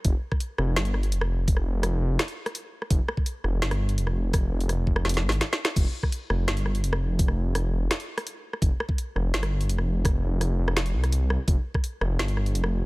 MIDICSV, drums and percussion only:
0, 0, Header, 1, 2, 480
1, 0, Start_track
1, 0, Key_signature, -4, "minor"
1, 0, Tempo, 357143
1, 65, Time_signature, 4, 2, 24, 8
1, 17277, End_track
2, 0, Start_track
2, 0, Title_t, "Drums"
2, 61, Note_on_c, 9, 42, 77
2, 64, Note_on_c, 9, 36, 120
2, 196, Note_off_c, 9, 42, 0
2, 199, Note_off_c, 9, 36, 0
2, 424, Note_on_c, 9, 36, 61
2, 424, Note_on_c, 9, 37, 51
2, 543, Note_on_c, 9, 42, 65
2, 559, Note_off_c, 9, 36, 0
2, 559, Note_off_c, 9, 37, 0
2, 678, Note_off_c, 9, 42, 0
2, 785, Note_on_c, 9, 37, 76
2, 919, Note_off_c, 9, 37, 0
2, 1027, Note_on_c, 9, 38, 117
2, 1027, Note_on_c, 9, 42, 77
2, 1144, Note_off_c, 9, 42, 0
2, 1144, Note_on_c, 9, 42, 36
2, 1162, Note_off_c, 9, 38, 0
2, 1265, Note_on_c, 9, 37, 51
2, 1279, Note_off_c, 9, 42, 0
2, 1387, Note_on_c, 9, 42, 34
2, 1399, Note_off_c, 9, 37, 0
2, 1507, Note_off_c, 9, 42, 0
2, 1507, Note_on_c, 9, 42, 63
2, 1631, Note_on_c, 9, 37, 78
2, 1641, Note_off_c, 9, 42, 0
2, 1766, Note_off_c, 9, 37, 0
2, 1985, Note_on_c, 9, 36, 114
2, 1988, Note_on_c, 9, 42, 79
2, 2105, Note_on_c, 9, 37, 56
2, 2119, Note_off_c, 9, 36, 0
2, 2123, Note_off_c, 9, 42, 0
2, 2239, Note_off_c, 9, 37, 0
2, 2462, Note_on_c, 9, 37, 80
2, 2462, Note_on_c, 9, 42, 64
2, 2596, Note_off_c, 9, 37, 0
2, 2596, Note_off_c, 9, 42, 0
2, 2947, Note_on_c, 9, 37, 54
2, 2947, Note_on_c, 9, 38, 119
2, 2947, Note_on_c, 9, 42, 77
2, 3064, Note_off_c, 9, 42, 0
2, 3064, Note_on_c, 9, 42, 35
2, 3081, Note_off_c, 9, 37, 0
2, 3081, Note_off_c, 9, 38, 0
2, 3199, Note_off_c, 9, 42, 0
2, 3308, Note_on_c, 9, 37, 77
2, 3308, Note_on_c, 9, 42, 35
2, 3427, Note_off_c, 9, 42, 0
2, 3427, Note_on_c, 9, 42, 63
2, 3442, Note_off_c, 9, 37, 0
2, 3561, Note_off_c, 9, 42, 0
2, 3788, Note_on_c, 9, 37, 54
2, 3904, Note_on_c, 9, 36, 115
2, 3905, Note_on_c, 9, 42, 79
2, 3923, Note_off_c, 9, 37, 0
2, 4038, Note_off_c, 9, 36, 0
2, 4040, Note_off_c, 9, 42, 0
2, 4146, Note_on_c, 9, 37, 84
2, 4265, Note_on_c, 9, 36, 58
2, 4280, Note_off_c, 9, 37, 0
2, 4383, Note_on_c, 9, 42, 64
2, 4399, Note_off_c, 9, 36, 0
2, 4517, Note_off_c, 9, 42, 0
2, 4627, Note_on_c, 9, 37, 54
2, 4762, Note_off_c, 9, 37, 0
2, 4866, Note_on_c, 9, 38, 115
2, 4866, Note_on_c, 9, 42, 78
2, 4989, Note_off_c, 9, 42, 0
2, 4989, Note_on_c, 9, 37, 80
2, 4989, Note_on_c, 9, 42, 36
2, 5001, Note_off_c, 9, 38, 0
2, 5123, Note_off_c, 9, 37, 0
2, 5123, Note_off_c, 9, 42, 0
2, 5227, Note_on_c, 9, 42, 37
2, 5348, Note_off_c, 9, 42, 0
2, 5348, Note_on_c, 9, 42, 66
2, 5469, Note_on_c, 9, 37, 54
2, 5482, Note_off_c, 9, 42, 0
2, 5603, Note_off_c, 9, 37, 0
2, 5826, Note_on_c, 9, 36, 120
2, 5829, Note_on_c, 9, 37, 83
2, 5829, Note_on_c, 9, 42, 80
2, 5960, Note_off_c, 9, 36, 0
2, 5963, Note_off_c, 9, 37, 0
2, 5963, Note_off_c, 9, 42, 0
2, 6190, Note_on_c, 9, 42, 38
2, 6307, Note_off_c, 9, 42, 0
2, 6307, Note_on_c, 9, 37, 56
2, 6307, Note_on_c, 9, 42, 68
2, 6441, Note_off_c, 9, 37, 0
2, 6441, Note_off_c, 9, 42, 0
2, 6545, Note_on_c, 9, 36, 61
2, 6667, Note_on_c, 9, 37, 88
2, 6680, Note_off_c, 9, 36, 0
2, 6786, Note_on_c, 9, 38, 69
2, 6801, Note_off_c, 9, 37, 0
2, 6846, Note_on_c, 9, 42, 81
2, 6908, Note_off_c, 9, 42, 0
2, 6908, Note_on_c, 9, 42, 37
2, 6921, Note_off_c, 9, 38, 0
2, 6947, Note_on_c, 9, 38, 73
2, 7042, Note_off_c, 9, 42, 0
2, 7081, Note_off_c, 9, 38, 0
2, 7110, Note_on_c, 9, 38, 82
2, 7151, Note_on_c, 9, 42, 37
2, 7245, Note_off_c, 9, 38, 0
2, 7271, Note_off_c, 9, 42, 0
2, 7271, Note_on_c, 9, 38, 87
2, 7271, Note_on_c, 9, 42, 69
2, 7405, Note_off_c, 9, 38, 0
2, 7405, Note_off_c, 9, 42, 0
2, 7429, Note_on_c, 9, 38, 100
2, 7563, Note_off_c, 9, 38, 0
2, 7591, Note_on_c, 9, 38, 104
2, 7725, Note_off_c, 9, 38, 0
2, 7744, Note_on_c, 9, 36, 123
2, 7749, Note_on_c, 9, 42, 84
2, 7749, Note_on_c, 9, 49, 75
2, 7879, Note_off_c, 9, 36, 0
2, 7884, Note_off_c, 9, 42, 0
2, 7884, Note_off_c, 9, 49, 0
2, 8104, Note_on_c, 9, 36, 62
2, 8110, Note_on_c, 9, 37, 55
2, 8231, Note_on_c, 9, 42, 70
2, 8238, Note_off_c, 9, 36, 0
2, 8244, Note_off_c, 9, 37, 0
2, 8365, Note_off_c, 9, 42, 0
2, 8468, Note_on_c, 9, 37, 81
2, 8603, Note_off_c, 9, 37, 0
2, 8708, Note_on_c, 9, 38, 126
2, 8708, Note_on_c, 9, 42, 85
2, 8828, Note_off_c, 9, 42, 0
2, 8828, Note_on_c, 9, 42, 39
2, 8842, Note_off_c, 9, 38, 0
2, 8947, Note_on_c, 9, 37, 55
2, 8963, Note_off_c, 9, 42, 0
2, 9070, Note_on_c, 9, 42, 38
2, 9081, Note_off_c, 9, 37, 0
2, 9191, Note_off_c, 9, 42, 0
2, 9191, Note_on_c, 9, 42, 69
2, 9310, Note_on_c, 9, 37, 87
2, 9325, Note_off_c, 9, 42, 0
2, 9444, Note_off_c, 9, 37, 0
2, 9664, Note_on_c, 9, 36, 123
2, 9667, Note_on_c, 9, 42, 85
2, 9788, Note_on_c, 9, 37, 57
2, 9798, Note_off_c, 9, 36, 0
2, 9802, Note_off_c, 9, 42, 0
2, 9923, Note_off_c, 9, 37, 0
2, 10149, Note_on_c, 9, 37, 81
2, 10149, Note_on_c, 9, 42, 70
2, 10283, Note_off_c, 9, 37, 0
2, 10283, Note_off_c, 9, 42, 0
2, 10628, Note_on_c, 9, 37, 55
2, 10628, Note_on_c, 9, 38, 126
2, 10628, Note_on_c, 9, 42, 83
2, 10750, Note_off_c, 9, 42, 0
2, 10750, Note_on_c, 9, 42, 39
2, 10762, Note_off_c, 9, 37, 0
2, 10762, Note_off_c, 9, 38, 0
2, 10885, Note_off_c, 9, 42, 0
2, 10988, Note_on_c, 9, 37, 83
2, 10988, Note_on_c, 9, 42, 38
2, 11110, Note_off_c, 9, 42, 0
2, 11110, Note_on_c, 9, 42, 71
2, 11123, Note_off_c, 9, 37, 0
2, 11245, Note_off_c, 9, 42, 0
2, 11469, Note_on_c, 9, 37, 56
2, 11584, Note_on_c, 9, 36, 127
2, 11589, Note_on_c, 9, 42, 79
2, 11604, Note_off_c, 9, 37, 0
2, 11718, Note_off_c, 9, 36, 0
2, 11723, Note_off_c, 9, 42, 0
2, 11830, Note_on_c, 9, 37, 78
2, 11944, Note_on_c, 9, 36, 65
2, 11965, Note_off_c, 9, 37, 0
2, 12073, Note_on_c, 9, 42, 69
2, 12078, Note_off_c, 9, 36, 0
2, 12207, Note_off_c, 9, 42, 0
2, 12314, Note_on_c, 9, 37, 50
2, 12448, Note_off_c, 9, 37, 0
2, 12551, Note_on_c, 9, 38, 126
2, 12551, Note_on_c, 9, 42, 82
2, 12672, Note_off_c, 9, 42, 0
2, 12672, Note_on_c, 9, 37, 78
2, 12672, Note_on_c, 9, 42, 36
2, 12686, Note_off_c, 9, 38, 0
2, 12806, Note_off_c, 9, 37, 0
2, 12806, Note_off_c, 9, 42, 0
2, 12911, Note_on_c, 9, 42, 38
2, 13030, Note_off_c, 9, 42, 0
2, 13030, Note_on_c, 9, 42, 69
2, 13150, Note_on_c, 9, 37, 52
2, 13164, Note_off_c, 9, 42, 0
2, 13285, Note_off_c, 9, 37, 0
2, 13504, Note_on_c, 9, 36, 126
2, 13511, Note_on_c, 9, 37, 75
2, 13511, Note_on_c, 9, 42, 80
2, 13639, Note_off_c, 9, 36, 0
2, 13646, Note_off_c, 9, 37, 0
2, 13646, Note_off_c, 9, 42, 0
2, 13992, Note_on_c, 9, 37, 50
2, 13992, Note_on_c, 9, 42, 67
2, 14126, Note_off_c, 9, 37, 0
2, 14126, Note_off_c, 9, 42, 0
2, 14352, Note_on_c, 9, 37, 79
2, 14469, Note_on_c, 9, 38, 127
2, 14469, Note_on_c, 9, 42, 80
2, 14486, Note_off_c, 9, 37, 0
2, 14592, Note_off_c, 9, 42, 0
2, 14592, Note_on_c, 9, 42, 36
2, 14603, Note_off_c, 9, 38, 0
2, 14726, Note_off_c, 9, 42, 0
2, 14832, Note_on_c, 9, 37, 51
2, 14832, Note_on_c, 9, 42, 36
2, 14951, Note_off_c, 9, 42, 0
2, 14951, Note_on_c, 9, 42, 65
2, 14967, Note_off_c, 9, 37, 0
2, 15086, Note_off_c, 9, 42, 0
2, 15190, Note_on_c, 9, 37, 75
2, 15325, Note_off_c, 9, 37, 0
2, 15425, Note_on_c, 9, 36, 117
2, 15428, Note_on_c, 9, 42, 78
2, 15559, Note_off_c, 9, 36, 0
2, 15563, Note_off_c, 9, 42, 0
2, 15785, Note_on_c, 9, 36, 62
2, 15792, Note_on_c, 9, 37, 52
2, 15910, Note_on_c, 9, 42, 63
2, 15919, Note_off_c, 9, 36, 0
2, 15926, Note_off_c, 9, 37, 0
2, 16044, Note_off_c, 9, 42, 0
2, 16147, Note_on_c, 9, 37, 77
2, 16281, Note_off_c, 9, 37, 0
2, 16388, Note_on_c, 9, 38, 121
2, 16388, Note_on_c, 9, 42, 80
2, 16509, Note_off_c, 9, 42, 0
2, 16509, Note_on_c, 9, 42, 36
2, 16523, Note_off_c, 9, 38, 0
2, 16626, Note_on_c, 9, 37, 51
2, 16643, Note_off_c, 9, 42, 0
2, 16749, Note_on_c, 9, 42, 36
2, 16760, Note_off_c, 9, 37, 0
2, 16869, Note_off_c, 9, 42, 0
2, 16869, Note_on_c, 9, 42, 62
2, 16984, Note_on_c, 9, 37, 76
2, 17003, Note_off_c, 9, 42, 0
2, 17118, Note_off_c, 9, 37, 0
2, 17277, End_track
0, 0, End_of_file